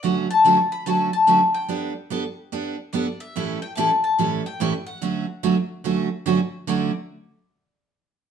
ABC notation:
X:1
M:4/4
L:1/8
Q:"Swing" 1/4=144
K:D
V:1 name="Mandolin"
f a2 b a a2 g- | g4- g z d e- | e g a a2 g2 f- | f6- f z |
d z6 z |]
V:2 name="Steel-string acoustic guitar"
[D,F,A,CF] z [D,F,A,CF] z [D,F,A,CF] z [D,F,A,CF] z | [G,B,DA] z [G,B,DA] z [G,B,DA] z [G,B,DA] z | [A,,E,G,CEA] z [A,,E,G,CEA] z [A,,E,G,CEA] z [A,,E,G,CEA] z | [D,F,A,CF] z [D,F,A,CF] z [D,F,A,CF] z [D,F,A,CF] z |
[D,F,A,CF] z6 z |]